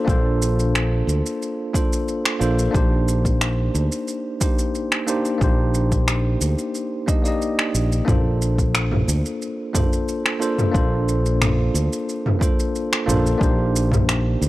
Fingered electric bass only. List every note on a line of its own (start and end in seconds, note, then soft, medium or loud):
0.08 1.02 A#1 medium
1.07 1.21 D2 medium
2.41 2.67 A#1 medium
2.74 3.68 A#1 medium
3.75 3.88 D2 medium
5.41 6.35 A#1 loud
6.41 6.54 D2 medium
7.74 8.00 A#1 medium
8.08 9.02 A#1 loud
9.08 9.21 D2 medium
10.75 11.68 A#1 medium
11.74 11.88 D2 medium
13.08 13.33 A#1 medium
13.41 14.35 A#1 loud
14.41 14.49 D2 medium